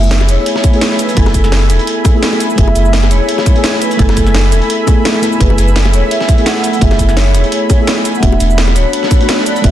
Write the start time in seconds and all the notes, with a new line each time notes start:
Already playing: F#1 A3 B3 E4 G#4 E5 G#5 B5
0.03 cabasa
0.11 snare, closed hi-hat
0.20 snare, high bongo
0.29 E1 C#5, closed hi-hat, cabasa
0.46 closed hi-hat
0.55 snare, high bongo
0.64 kick, closed hi-hat, cabasa
0.71 A3 B3 E4, closed hi-hat
0.76 G#4
0.81 snare, closed hi-hat, cabasa
0.91 snare
0.99 B4, closed hi-hat, cabasa
1.09 closed hi-hat, cabasa
1.15 F#1 A3 B3 E4 A4, kick, closed hi-hat
1.19 G#5
1.26 snare, high bongo
1.34 F#1, kick, closed hi-hat, cabasa
1.44 snare, cabasa
1.52 snare, closed hi-hat
1.70 E1, closed hi-hat, cabasa
1.79 closed hi-hat
1.87 closed hi-hat
2.05 kick, closed hi-hat, high bongo, cabasa
2.12 A3 B3 E4
2.17 G#4
2.23 snare, closed hi-hat, cabasa
2.33 high bongo
2.40 closed hi-hat, cabasa
2.50 cabasa
2.56 F#1 A3 B3 E4 E5, kick, closed hi-hat
2.60 G#4
2.67 high bongo
2.75 F#1, closed hi-hat, cabasa
2.85 cabasa
2.93 snare, closed hi-hat
3.03 snare, high bongo
3.11 E1 C#5, closed hi-hat, cabasa
3.29 closed hi-hat
3.38 snare, high bongo
3.46 kick, closed hi-hat, cabasa
3.53 A3 B3 E4, closed hi-hat
3.58 G#4
3.64 snare, closed hi-hat, cabasa
3.73 snare
3.81 B4, closed hi-hat, cabasa
3.91 closed hi-hat, cabasa
3.97 F#1 A3 B3 E4 A4, kick, closed hi-hat
4.02 G#5
4.09 snare, high bongo
4.17 F#1, kick, closed hi-hat, cabasa
4.27 snare, cabasa
4.35 snare, closed hi-hat
4.52 E1, closed hi-hat, cabasa
4.62 closed hi-hat
4.70 closed hi-hat
4.86 A3 B3 E4 G#4, kick, closed hi-hat, high bongo, cabasa
5.04 A3 B3 E4 G#4, snare, closed hi-hat, cabasa
5.14 high bongo
5.22 A3 B3 E4 A4, closed hi-hat, cabasa
5.32 cabasa
5.38 F#1 A3 B3 E4 B4, kick, closed hi-hat
5.43 G#4
5.50 high bongo
5.58 F#1, closed hi-hat, cabasa
5.68 cabasa
5.76 snare, closed hi-hat
5.85 snare, high bongo
5.93 E1 C#5, closed hi-hat, cabasa
6.11 E5, closed hi-hat
6.21 snare, high bongo
6.29 kick, closed hi-hat, cabasa
6.36 A3 B3 E4, closed hi-hat
6.41 G#4
6.46 F#5, snare, closed hi-hat, cabasa
6.56 snare
6.64 closed hi-hat, cabasa
6.73 closed hi-hat, cabasa
6.79 F#1 A3 B3 E4 E5, kick, closed hi-hat
6.84 G#4
6.91 snare, high bongo
6.99 F#1, kick, closed hi-hat, cabasa
7.09 snare, cabasa
7.16 C#5, snare, closed hi-hat
7.34 E1, closed hi-hat, cabasa
7.44 closed hi-hat
7.52 closed hi-hat
7.70 kick, closed hi-hat, high bongo, cabasa
7.77 A3 B3 E4
7.82 G#4
7.87 snare, closed hi-hat, cabasa
7.97 high bongo
8.05 closed hi-hat, cabasa
8.15 F#5, cabasa
8.20 E1 A3 B3 D4 A4 E5 F#5 B5, kick, closed hi-hat
8.25 F#4
8.32 high bongo
8.40 E1, closed hi-hat, cabasa
8.50 cabasa
8.58 snare, closed hi-hat
8.67 snare, high bongo
8.76 D1 C#5, closed hi-hat, cabasa
8.93 closed hi-hat
9.03 snare, high bongo
9.11 kick, closed hi-hat, cabasa
9.18 A3 B3 D4, closed hi-hat
9.23 F#4
9.29 snare, closed hi-hat, cabasa
9.38 snare
9.46 D5, closed hi-hat, cabasa
9.56 closed hi-hat, cabasa
9.62 E1 A3 B3 D4 E5, kick, closed hi-hat
9.66 F#4